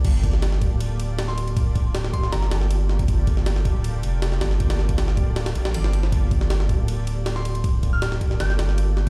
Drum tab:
CC |x---------------|----------------|----------------|----------------|
RD |x-x-x-x-x-x-x-xx|x-x-x-x-x-x-x--x|x-x-x-x-x-x-x-x-|xx-xx-x-xxx-x-x-|
SD |---ooo------oo--|----oo-ooooo--o-|---ooo------oooo|-oo-oo--oo-o-o-o|
BD |o-o---o---------|o-o---o--------o|o-o---o---------|o--o--o---------|

CC |----------------|----------------|
RD |x-x-x-x-x-x-x-xx|x-x-x-x-x-x-x---|
SD |---ooo------oo--|----oo-ooooo--o-|
BD |o-o---o---------|o-o---o---------|